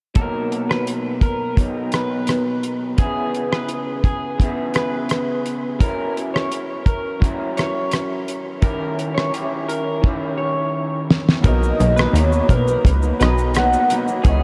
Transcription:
0.14 B2 F#3 A#3 A#4, kick, closed hi-hat
0.19 D#4
0.52 closed hi-hat
0.69 B4, cross-stick
0.87 closed hi-hat
1.21 A#4, kick, closed hi-hat
1.56 B2 F#3, kick, closed hi-hat
1.60 D#4
1.92 B4, cross-stick, closed hi-hat
2.27 cross-stick, closed hi-hat
2.63 closed hi-hat
2.97 C#3 B3 E4 G#4, kick, closed hi-hat
3.02 G#4
3.35 closed hi-hat
3.52 B4, cross-stick
3.69 closed hi-hat
4.04 G#4, kick, closed hi-hat
4.38 C#3 B3 E4, kick, closed hi-hat
4.43 G#4
4.74 B4, cross-stick, closed hi-hat
5.09 cross-stick, closed hi-hat
5.46 closed hi-hat
5.79 F#3 C#4 E4 A#4, kick, closed hi-hat
5.84 A#4
6.17 closed hi-hat
6.34 C#5, cross-stick
6.52 closed hi-hat
6.86 A#4, kick, closed hi-hat
7.20 F#3 C#4 E4, kick
7.24 A#4, closed hi-hat
7.57 C#5, cross-stick, closed hi-hat
7.91 cross-stick, closed hi-hat
8.28 closed hi-hat
8.61 D#3 C#4 E4 G4 A#4, kick, closed hi-hat
8.99 closed hi-hat
9.15 C#5, cross-stick
9.31 D#3 C#4 E4 G4, closed hi-hat
9.68 A#4, closed hi-hat
10.02 D#3 C#4 E4, kick
10.06 G4
10.38 C#5
11.11 snare
11.29 snare
11.41 B2 F#3 B3 F#4 A#4 A#5, kick, closed hi-hat, shaker
11.45 B1 A#3 D#4 D#5
11.63 shaker
11.78 B1 B2 F#3 A#3 D#4, closed hi-hat, shaker
11.96 B4, cross-stick, shaker
12.13 D#2 B2 F#3 A#3 D#4, closed hi-hat, shaker
12.18 C#5
12.32 shaker
12.48 B1 B2 F#3 A#3 D#4 A#4, kick, closed hi-hat, shaker
12.52 B4
12.67 F#3 A#3 D#4, shaker
12.85 C#2 B4, kick, closed hi-hat, shaker
13.02 F#3 A#3 D#4, shaker
13.19 B1 B2 F#3 B3 D#4 F#4 B4 D#5 A#5, cross-stick, closed hi-hat, shaker
13.38 shaker
13.55 B2 F#3 A#3 D#4 F#5, cross-stick, closed hi-hat, shaker
13.73 shaker
13.89 B2 F#3 A#3 D#4, closed hi-hat, shaker
14.06 F#3 A#3 D#4, shaker
14.23 C#2 C#3 B3 E4 G#4, kick, closed hi-hat, shaker
14.27 G#4 C#5 D#5

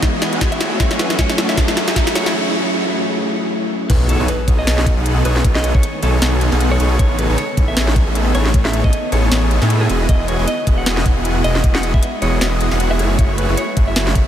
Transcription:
Already playing: E3 G#3 B3 C#4 D#4 F#4 G#4, riser
0.02 E1 B3 E4 F#4 G#4 D#5, kick, snare, closed hi-hat
0.22 snare, closed hi-hat
0.33 E2 B3 E4 F#4 G#4 F#5, closed hi-hat
0.41 kick, snare, closed hi-hat
0.52 E5, closed hi-hat
0.60 F#1 A3 C#4 E4 F#4 G#4 C#5, snare, closed hi-hat
0.79 F#1 F#3 A3 C#4 E4 F#4 G#4 C#5, kick, snare, closed hi-hat
0.91 snare
0.99 B4, snare, closed hi-hat
1.09 F#1 F#3 A3 C#4 E4 F#4 G#4 C#5, snare, closed hi-hat
1.19 C#5, kick, snare, closed hi-hat
1.30 snare, closed hi-hat
1.36 F#1 F#3 A3 C#4 E4 F#4 G#4 C#5, snare, closed hi-hat
1.40 A4
1.49 E5, snare
1.57 F#1 A3 E4 F#4 G#4 C#5, kick, snare, closed hi-hat
1.68 snare
1.77 snare, closed hi-hat
1.88 F#1 A3 E4 F#4 G#4 E5, snare, closed hi-hat
1.96 kick, snare, closed hi-hat
2.07 snare, closed hi-hat
2.15 F#1 A3 E4 F#4 G#4 C#5, snare, closed hi-hat
2.26 snare
2.34 F#3 A3 C#4 E4 G#4
2.64 F#3 A3 C#4 E4 G#4
2.91 F#3 A3 C#4 E4
2.95 G#4
3.90 B1 C#3 D#3 G#3 A3 B3 D#4 G#4 A4 B4 C#5, kick, closed hi-hat, crash, impact
4.09 A4, closed hi-hat
4.20 B1 B3 D#4 G#4 A4 C#5
4.28 B4, closed hi-hat
4.48 B1 B3 D#4 G#4 A4 C#5, kick, closed hi-hat
4.59 D#5
4.67 B1 B3 D#4 G#4 A4 C#5, snare, closed hi-hat
4.78 snare
4.86 kick, closed hi-hat
4.97 B1 B3 D#4 G#4 A4 F#5
5.06 closed hi-hat
5.25 B1 B3 D#4 G#4 A4 B4 C#5, closed hi-hat
5.36 snare
5.44 B1 B3 D#4 G#4 A4 C#5, kick, closed hi-hat
5.55 D#5, snare
5.64 closed hi-hat
5.75 B1 B3 D#4 G#4 A4 C#5, kick
5.83 closed hi-hat
6.03 B1 B3 D#4 G#4 A4 C#5, closed hi-hat
6.22 B1 B3 D#4 G#4 A4 C#5, snare, closed hi-hat
6.41 closed hi-hat
6.52 B1 B3 D#4 G#4 A4 F#5, snare
6.61 closed hi-hat
6.71 C#5
6.80 B1 B3 D#4 G#4 A4 C#5, closed hi-hat
6.99 A1 B3 D#4 G#4 A4 C#5, kick, closed hi-hat
7.18 B4, closed hi-hat
7.30 A1 B3 D#4 G#4 A4 C#5
7.38 C#5, closed hi-hat
7.57 A1 B3 D#4 G#4 A4 C#5, kick, closed hi-hat
7.68 E5
7.77 A1 B3 D#4 G#4 A4 C#5, snare, closed hi-hat
7.88 snare
7.96 kick, closed hi-hat
8.07 A1 B3 D#4 G#4 A4 E5
8.15 closed hi-hat
8.35 A1 B3 D#4 G#4 A4 C#5, closed hi-hat
8.46 snare
8.54 A1 B3 D#4 G#4 A4 C#5, kick, closed hi-hat
8.65 E5, snare
8.73 closed hi-hat
8.84 A1 B3 D#4 G#4 A4 C#5 D#5, kick
8.93 closed hi-hat
9.12 A1 B3 D#4 G#4 A4 C#5, closed hi-hat
9.31 A1 B3 D#4 G#4 A4 C#5, snare, closed hi-hat
9.51 closed hi-hat
9.62 A2 B3 D#4 G#4 A4 E5, snare
9.70 closed hi-hat
9.81 G#4
9.90 E1 F#3 B3 D#4 E4 F#4 G#4 D#5, closed hi-hat
10.09 E1 B3 E4 F#4 G#4 D#5, kick, closed hi-hat
10.28 C#5, closed hi-hat
10.39 E1 B3 E4 F#4 G#4 D#5
10.48 D#5, closed hi-hat
10.67 E1 B3 E4 F#4 G#4 D#5, kick, closed hi-hat
10.78 F#5
10.86 E1 B3 E4 F#4 G#4 D#5, snare, closed hi-hat
10.97 snare
11.06 kick, closed hi-hat
11.17 E1 B3 E4 F#4 G#4 F#5
11.25 closed hi-hat
11.44 E1 B3 E4 F#4 G#4 D#5, closed hi-hat
11.55 snare
11.64 E1 B3 E4 F#4 G#4 D#5, kick, closed hi-hat
11.75 F#5, snare
11.83 closed hi-hat
11.94 E1 B3 E4 F#4 G#4 D#5 E5, kick
12.03 closed hi-hat
12.22 E1 B3 E4 F#4 G#4 C#5 D#5, closed hi-hat
12.41 E1 B3 E4 F#4 G#4 D#5, snare, closed hi-hat
12.61 closed hi-hat
12.71 E1 B3 E4 F#4 G#4 F#5, snare
12.80 closed hi-hat
12.91 E5
12.99 F#1 C#3 A3 E4 F#4 G#4 C#5, closed hi-hat
13.19 F#1 A3 E4 F#4 G#4 C#5, kick, closed hi-hat
13.38 B4, closed hi-hat
13.49 F#1 A3 E4 F#4 G#4 C#5
13.57 C#5, closed hi-hat
13.77 F#1 A3 E4 F#4 G#4 C#5, kick, closed hi-hat
13.88 E5
13.96 F#1 A3 E4 F#4 G#4 C#5, snare, closed hi-hat
14.07 snare
14.15 kick, closed hi-hat

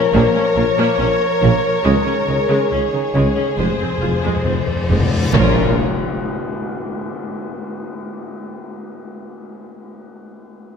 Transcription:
Already playing: F3 A#4 C#5
0.13 A#1 A#2 A#3
0.35 A#2 C#4
0.56 A#1 A#2 F4
0.78 A#2 A#3
0.99 A#1 A#2 C#4
1.41 A#1 A#2 A#3
1.82 C#2 C#3 D#3 G#3 G#4, reverse cymbal
2.06 C#3 C#4
2.27 C#2 C#3 D#4
2.49 C#3 G#3
2.71 C#2 C#3 C#4 G#4
2.93 C#3 D#4
3.14 C#2 C#3 G#3
3.36 C#3 C#4
3.58 F1 F2 F3 G#3 C5
3.68 F2
3.75 F2
3.80 F2 C4
3.90 F2
3.98 F2 F4
4.02 F1 F2
4.12 F2
4.19 F2
4.23 F2 G#3
4.28 F2
4.36 F2
4.44 F1 F2 C4
4.52 F2
4.61 F2
4.68 F2
4.76 F2
4.84 F2
4.89 F1 F2 G#3
5.00 F2
5.08 F2
5.17 F2
5.25 F2
5.33 A#1 A#2 F3 F4 A#4 C#5, tam-tam, impact

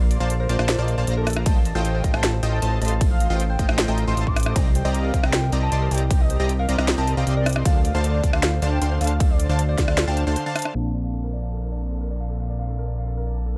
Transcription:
Already playing: A#1 A#3 F4 A4 C5 D5 C6
0.01 A#4 F5
0.11 D5, closed hi-hat
0.20 A#1 A#3 F4 C5 D5 F5 A5
0.30 A4, closed hi-hat
0.40 A#4 C5
0.49 A#1 A#3 F4 C5 D5 A5, closed hi-hat
0.59 A#1 A#3 F4 C5 D5 F5 A5, cross-stick
0.69 A4, snare, closed hi-hat
0.78 A#1 A#3 F4 A#4 C5 D5 D#5 A5
0.88 D5, closed hi-hat
0.98 A#1 A#3 F4 C5 D5 A5
1.07 A#1 A#3 F4 A4 C5 D5 A#5, closed hi-hat
1.17 A4 A#4
1.27 D5, cross-stick, closed hi-hat, open hi-hat
1.33 F5, cross-stick, closed hi-hat
1.46 A1 A3 F4 C5 D#5 G5 A5, kick, closed hi-hat, ride
1.56 F5
1.65 D#5 A5, closed hi-hat
1.75 A1 A3 F4 C5 D#5 F5 G5
1.85 A4 G5, closed hi-hat
1.95 C5
2.04 A1 A3 F4 C5 D#5 G5, kick, closed hi-hat
2.14 A1 A3 F4 C5 D#5 F5 G5 A5, cross-stick
2.23 A4, snare, closed hi-hat
2.33 C5
2.43 A1 A3 F4 C5 D#5 G5, closed hi-hat
2.53 A5
2.62 A1 A3 F4 A4 C5 D#5 A5, closed hi-hat
2.72 C5
2.81 A1 A3 F4 C5 D#5 A5 C6, closed hi-hat, open hi-hat
2.88 F5, closed hi-hat
3.01 A4, kick, closed hi-hat, ride
3.11 F5
3.20 D#5, closed hi-hat
3.30 A1 A3 F4 C5 D#5 F5 G5
3.40 A4, closed hi-hat
3.50 C5 G5
3.59 A1 A3 F4 C5 D#5 G5, kick, closed hi-hat
3.69 A1 A3 F4 C5 D#5 F5 G5, cross-stick
3.78 A4, snare, closed hi-hat
3.88 A1 A3 F4 C5 D#5 G5 A#5
3.98 D#5, closed hi-hat
4.07 A1 A3 F4 C5 D#5 G5 A5 C6
4.17 A1 A3 F4 C5 D#5 A5 D#6, closed hi-hat
4.27 C6 D6, kick
4.36 A4, cross-stick, closed hi-hat, open hi-hat
4.43 C5, cross-stick, closed hi-hat
4.56 C2 C4 G4 D5 D#5 G5 A#5, kick, closed hi-hat, ride
4.66 D#5
4.75 C5 G5, closed hi-hat
4.85 C2 C4 G4 D5 D#5 A#5
4.95 G4 F5, closed hi-hat
5.04 A#4
5.14 C2 C4 G4 C5 D5 D#5 A#5, kick, closed hi-hat
5.24 C2 C4 G4 D5 D#5 G5 A#5, cross-stick
5.33 G4, snare, closed hi-hat
5.43 A#4
5.52 C2 C4 G4 C5 D5 D#5 A#5, closed hi-hat
5.62 G5 A5
5.72 C2 C4 G4 D5 D#5 C6, closed hi-hat
5.82 A#4
5.91 C2 C4 G4 C5 D5 D#5 G5 A#5, closed hi-hat, open hi-hat
5.98 D#5, closed hi-hat
6.11 G4, kick, closed hi-hat, ride
6.20 D#5
6.30 C5, closed hi-hat
6.40 C2 C4 G4 D5 D#5 A#5
6.49 G4, closed hi-hat
6.59 A#4 F5
6.69 C2 C4 G4 C5 D5 D#5 A#5, closed hi-hat
6.78 C2 C4 G4 D5 D#5 A#5, cross-stick
6.88 G4, snare, closed hi-hat
6.98 C2 C4 G4 A#4 D5 D#5 A5 A#5
7.07 C5, closed hi-hat
7.17 C2 C4 G4 D5 D#5 F5 G5 A#5
7.27 C2 C4 G4 D5 D#5 C6, closed hi-hat
7.36 A#4 D5
7.46 C5, cross-stick, closed hi-hat, open hi-hat
7.53 D#5, cross-stick, closed hi-hat
7.65 D2 D3 D4 A4 C5 F5 A5, kick, closed hi-hat, ride
7.75 F5
7.85 D5 F5, closed hi-hat
7.95 D2 D3 D4 C5 F5 A5
8.04 A4 D5, closed hi-hat
8.14 C5
8.23 D2 D3 D4 C5 D5 F5 A5, kick, closed hi-hat
8.33 D2 D3 D4 C5 F5 A5, cross-stick
8.43 A4, snare, closed hi-hat
8.53 C5
8.62 D2 D3 D4 C5 D5 F5 A5, closed hi-hat
8.72 G5 A5
8.82 D2 D3 D4 A4 C5 F5 C6, closed hi-hat
8.91 C5
9.01 D2 D3 D4 C5 D5 F5 A5, closed hi-hat, open hi-hat
9.07 F5, closed hi-hat
9.20 A4, kick, closed hi-hat, ride
9.30 D5 F5
9.40 D5, closed hi-hat
9.49 D2 D3 D4 C5 F5 A5
9.59 A4, closed hi-hat
9.69 C5 D5
9.78 D2 D3 D4 C5 D5 F5 A5, kick, snare, closed hi-hat
9.88 D2 D3 D4 C5 F5 A5, cross-stick
9.98 A4, snare, closed hi-hat
10.07 D2 D3 D4 C5 F5 G5 A5
10.17 A5, closed hi-hat
10.27 D2 D3 D4 C5 D5 F5 A5 C6
10.36 C5, closed hi-hat
10.46 D3 D4 C5 F5 A5
10.56 A5, cross-stick, closed hi-hat, open hi-hat
10.62 A5, cross-stick, closed hi-hat
10.73 A#1 F3 A#3 C4 D4 A4 A5, crash, downlifter
10.85 F5
10.94 D5
11.04 F5
11.14 A4
11.24 A#4
11.33 D5
11.43 F5
11.52 A4
11.62 A#4
11.72 D5
11.81 A5
11.91 A4
12.01 A#4
12.10 D5
12.20 F5
12.30 A4
12.40 F5
12.49 D5
12.59 F5
12.69 A4
12.78 A#4
12.88 D5
12.98 F5
13.07 A4
13.17 A#4
13.27 D5
13.36 A5
13.46 A4

